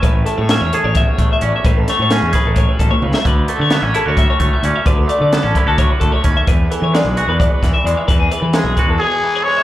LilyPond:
<<
  \new Staff \with { instrumentName = "Clean electric guitar" } { \time 7/8 \key a \major \tempo 4 = 131 b'8 a'16 cis''16 e''16 cis''16 a'16 cis''16 e''16 cis''8 e''16 d''16 e''16 | b'16 a'16 cis''16 cis''16 gis'8 b'16 a'16 cis''16 b'16 a'16 cis''16 b'16 e''16 | b'8 a'16 cis''16 e''16 cis''16 a'16 cis''16 e''16 cis''8 e''16 d''16 e''16 | b'16 a'16 d''16 d''16 a'8 b'16 a'16 cis''16 b'16 a'16 cis''16 b'16 e''16 |
b'8 a'16 cis''16 d''16 b'16 gis'16 b'16 d''16 b'8 e''16 d''16 e''16 | b'16 gis'16 b'16 b'16 gis'8 b'16 a'16 cis''16 b'16 a'16 cis''16 b'16 e''16 | }
  \new Staff \with { instrumentName = "Trumpet" } { \time 7/8 \key a \major r2. r8 | r2. r8 | r2. r8 | r2. r8 |
r2. r8 | r2 gis'4 cis''8 | }
  \new Staff \with { instrumentName = "Clean electric guitar" } { \time 7/8 \key a \major << { r4 cis'8 gis'4. cis'8 | r4 cis'8 gis'2 | r4 b16 cis'16 e'16 fis'4~ fis'16 cis'8 | r4 b16 cis'16 e'16 fis'4~ fis'16 cis'8 |
r4 gis8 fis'4. gis8 | r4 gis8 fis'4. gis8 | } \\ { a,8 a4. e,8 a4 | a,8 a4. a,8 b,8 cis8 | d8 a4. a,8 a4 | d8 a4. a,8 a4 |
e,8 e4. b,8 e4 | e,8 e4. b,8 e4 | } >> }
  \new Staff \with { instrumentName = "Fingered electric bass" } { \clef bass \time 7/8 \key a \major a,,8 r16 a,8 e,16 r16 a,,8 r16 a,,16 r16 a,,16 r16 | a,,8 r16 a,8 e,16 r16 a,,8 r16 a,,16 r16 cis,16 r16 | d,8 r16 d8 a,,16 r16 d,8 r16 d,16 r16 d,16 r16 | d,8 r16 d8 a,,16 r16 d,8 r16 d,16 r16 dis,16 r16 |
e,8 r16 e8 b,,16 r16 e,8 r16 e,16 r16 e,16 r16 | e,8 r16 e8 b,,16 r16 e,16 r4. | }
  \new DrumStaff \with { instrumentName = "Drums" } \drummode { \time 7/8 <hh bd>8 hh8 <hh sn>8 hh8 <hh bd>8 <hh bd>8 hh8 | <hh bd>8 <hh sn>8 <hh sn>8 <hh bd sn>8 <hh bd>8 <hh bd>16 tommh16 toml16 sn16 | <hh bd>8 hh8 <hh sn>8 hh8 <hh bd>8 <hh bd>8 hh8 | <hh bd>8 hh8 <hh sn>8 <hh bd>8 <hh bd>8 <hh bd>8 <hh bd>8 |
<hh bd>8 hh8 <hh sn>8 hh8 <hh bd>8 <hh bd sn>8 hh8 | <hh bd>8 hh8 <hh sn>8 <hh bd>8 r4. | }
>>